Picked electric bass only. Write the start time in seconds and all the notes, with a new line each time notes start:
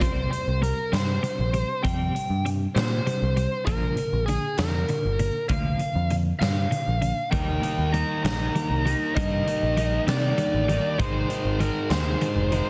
0.02 C2
0.47 C2
0.93 G2
1.39 A#1
1.85 F2
2.30 G2
2.76 A#2
3.22 C2
3.67 A#1
4.13 A#1
4.59 F2
5.05 G1
5.50 D2
5.95 F2
6.41 G2
6.87 A#1
7.33 D#2
7.78 D#2
8.24 A#1
8.70 C2
9.17 G2
9.63 A#1
10.07 C3
10.54 A1
10.99 G#1
11.45 G#1
11.90 D#2
12.36 F1